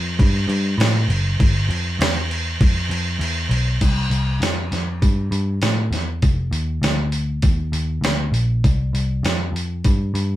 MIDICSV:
0, 0, Header, 1, 3, 480
1, 0, Start_track
1, 0, Tempo, 602410
1, 1118, Time_signature, 4, 2, 24, 8
1, 8256, End_track
2, 0, Start_track
2, 0, Title_t, "Picked electric bass"
2, 0, Program_c, 0, 34
2, 0, Note_on_c, 0, 41, 101
2, 142, Note_off_c, 0, 41, 0
2, 151, Note_on_c, 0, 43, 94
2, 376, Note_off_c, 0, 43, 0
2, 381, Note_on_c, 0, 43, 97
2, 615, Note_off_c, 0, 43, 0
2, 620, Note_on_c, 0, 45, 91
2, 857, Note_off_c, 0, 45, 0
2, 863, Note_on_c, 0, 30, 99
2, 1098, Note_off_c, 0, 30, 0
2, 1110, Note_on_c, 0, 31, 98
2, 1340, Note_off_c, 0, 31, 0
2, 1345, Note_on_c, 0, 41, 90
2, 1579, Note_off_c, 0, 41, 0
2, 1588, Note_on_c, 0, 40, 96
2, 2048, Note_off_c, 0, 40, 0
2, 2079, Note_on_c, 0, 41, 92
2, 2301, Note_off_c, 0, 41, 0
2, 2306, Note_on_c, 0, 41, 98
2, 2539, Note_off_c, 0, 41, 0
2, 2545, Note_on_c, 0, 40, 95
2, 2779, Note_off_c, 0, 40, 0
2, 2784, Note_on_c, 0, 35, 98
2, 3018, Note_off_c, 0, 35, 0
2, 3036, Note_on_c, 0, 36, 89
2, 3263, Note_off_c, 0, 36, 0
2, 3268, Note_on_c, 0, 36, 80
2, 3501, Note_off_c, 0, 36, 0
2, 3507, Note_on_c, 0, 41, 81
2, 3741, Note_off_c, 0, 41, 0
2, 3760, Note_on_c, 0, 41, 83
2, 3987, Note_off_c, 0, 41, 0
2, 3999, Note_on_c, 0, 43, 77
2, 4227, Note_off_c, 0, 43, 0
2, 4232, Note_on_c, 0, 43, 82
2, 4464, Note_off_c, 0, 43, 0
2, 4476, Note_on_c, 0, 45, 82
2, 4702, Note_off_c, 0, 45, 0
2, 4707, Note_on_c, 0, 40, 82
2, 4942, Note_off_c, 0, 40, 0
2, 4962, Note_on_c, 0, 29, 89
2, 5185, Note_off_c, 0, 29, 0
2, 5189, Note_on_c, 0, 39, 82
2, 5423, Note_off_c, 0, 39, 0
2, 5431, Note_on_c, 0, 38, 91
2, 5893, Note_off_c, 0, 38, 0
2, 5917, Note_on_c, 0, 39, 85
2, 6148, Note_off_c, 0, 39, 0
2, 6153, Note_on_c, 0, 39, 86
2, 6379, Note_off_c, 0, 39, 0
2, 6384, Note_on_c, 0, 38, 80
2, 6621, Note_off_c, 0, 38, 0
2, 6627, Note_on_c, 0, 34, 90
2, 6863, Note_off_c, 0, 34, 0
2, 6886, Note_on_c, 0, 36, 92
2, 7113, Note_off_c, 0, 36, 0
2, 7116, Note_on_c, 0, 36, 82
2, 7347, Note_off_c, 0, 36, 0
2, 7356, Note_on_c, 0, 41, 83
2, 7581, Note_off_c, 0, 41, 0
2, 7585, Note_on_c, 0, 41, 84
2, 7821, Note_off_c, 0, 41, 0
2, 7844, Note_on_c, 0, 43, 81
2, 8071, Note_off_c, 0, 43, 0
2, 8078, Note_on_c, 0, 43, 86
2, 8256, Note_off_c, 0, 43, 0
2, 8256, End_track
3, 0, Start_track
3, 0, Title_t, "Drums"
3, 155, Note_on_c, 9, 36, 114
3, 157, Note_on_c, 9, 49, 84
3, 234, Note_off_c, 9, 36, 0
3, 236, Note_off_c, 9, 49, 0
3, 395, Note_on_c, 9, 49, 60
3, 474, Note_off_c, 9, 49, 0
3, 638, Note_on_c, 9, 49, 76
3, 646, Note_on_c, 9, 38, 114
3, 718, Note_off_c, 9, 49, 0
3, 726, Note_off_c, 9, 38, 0
3, 877, Note_on_c, 9, 49, 61
3, 957, Note_off_c, 9, 49, 0
3, 1116, Note_on_c, 9, 36, 111
3, 1117, Note_on_c, 9, 49, 84
3, 1196, Note_off_c, 9, 36, 0
3, 1197, Note_off_c, 9, 49, 0
3, 1359, Note_on_c, 9, 49, 59
3, 1439, Note_off_c, 9, 49, 0
3, 1600, Note_on_c, 9, 49, 86
3, 1608, Note_on_c, 9, 38, 120
3, 1679, Note_off_c, 9, 49, 0
3, 1687, Note_off_c, 9, 38, 0
3, 1842, Note_on_c, 9, 49, 65
3, 1921, Note_off_c, 9, 49, 0
3, 2077, Note_on_c, 9, 49, 91
3, 2078, Note_on_c, 9, 36, 124
3, 2157, Note_off_c, 9, 36, 0
3, 2157, Note_off_c, 9, 49, 0
3, 2320, Note_on_c, 9, 49, 68
3, 2400, Note_off_c, 9, 49, 0
3, 2559, Note_on_c, 9, 49, 82
3, 2639, Note_off_c, 9, 49, 0
3, 2798, Note_on_c, 9, 49, 66
3, 2878, Note_off_c, 9, 49, 0
3, 3037, Note_on_c, 9, 46, 66
3, 3037, Note_on_c, 9, 57, 101
3, 3039, Note_on_c, 9, 36, 103
3, 3117, Note_off_c, 9, 46, 0
3, 3117, Note_off_c, 9, 57, 0
3, 3119, Note_off_c, 9, 36, 0
3, 3278, Note_on_c, 9, 46, 50
3, 3358, Note_off_c, 9, 46, 0
3, 3521, Note_on_c, 9, 46, 65
3, 3529, Note_on_c, 9, 38, 103
3, 3601, Note_off_c, 9, 46, 0
3, 3609, Note_off_c, 9, 38, 0
3, 3761, Note_on_c, 9, 46, 51
3, 3769, Note_on_c, 9, 38, 30
3, 3841, Note_off_c, 9, 46, 0
3, 3849, Note_off_c, 9, 38, 0
3, 4002, Note_on_c, 9, 36, 104
3, 4003, Note_on_c, 9, 46, 71
3, 4081, Note_off_c, 9, 36, 0
3, 4082, Note_off_c, 9, 46, 0
3, 4239, Note_on_c, 9, 46, 49
3, 4319, Note_off_c, 9, 46, 0
3, 4475, Note_on_c, 9, 46, 67
3, 4483, Note_on_c, 9, 38, 109
3, 4554, Note_off_c, 9, 46, 0
3, 4562, Note_off_c, 9, 38, 0
3, 4722, Note_on_c, 9, 46, 55
3, 4730, Note_on_c, 9, 38, 33
3, 4801, Note_off_c, 9, 46, 0
3, 4809, Note_off_c, 9, 38, 0
3, 4959, Note_on_c, 9, 46, 65
3, 4962, Note_on_c, 9, 36, 101
3, 5039, Note_off_c, 9, 46, 0
3, 5042, Note_off_c, 9, 36, 0
3, 5200, Note_on_c, 9, 46, 54
3, 5280, Note_off_c, 9, 46, 0
3, 5442, Note_on_c, 9, 46, 76
3, 5450, Note_on_c, 9, 38, 97
3, 5522, Note_off_c, 9, 46, 0
3, 5530, Note_off_c, 9, 38, 0
3, 5675, Note_on_c, 9, 46, 54
3, 5755, Note_off_c, 9, 46, 0
3, 5915, Note_on_c, 9, 46, 77
3, 5921, Note_on_c, 9, 36, 116
3, 5995, Note_off_c, 9, 46, 0
3, 6000, Note_off_c, 9, 36, 0
3, 6160, Note_on_c, 9, 46, 56
3, 6240, Note_off_c, 9, 46, 0
3, 6403, Note_on_c, 9, 46, 73
3, 6411, Note_on_c, 9, 38, 105
3, 6483, Note_off_c, 9, 46, 0
3, 6491, Note_off_c, 9, 38, 0
3, 6644, Note_on_c, 9, 46, 55
3, 6723, Note_off_c, 9, 46, 0
3, 6886, Note_on_c, 9, 36, 95
3, 6888, Note_on_c, 9, 46, 69
3, 6966, Note_off_c, 9, 36, 0
3, 6967, Note_off_c, 9, 46, 0
3, 7129, Note_on_c, 9, 46, 51
3, 7209, Note_off_c, 9, 46, 0
3, 7367, Note_on_c, 9, 46, 66
3, 7375, Note_on_c, 9, 38, 102
3, 7446, Note_off_c, 9, 46, 0
3, 7454, Note_off_c, 9, 38, 0
3, 7618, Note_on_c, 9, 46, 51
3, 7697, Note_off_c, 9, 46, 0
3, 7844, Note_on_c, 9, 46, 72
3, 7848, Note_on_c, 9, 36, 105
3, 7924, Note_off_c, 9, 46, 0
3, 7927, Note_off_c, 9, 36, 0
3, 8089, Note_on_c, 9, 46, 52
3, 8169, Note_off_c, 9, 46, 0
3, 8256, End_track
0, 0, End_of_file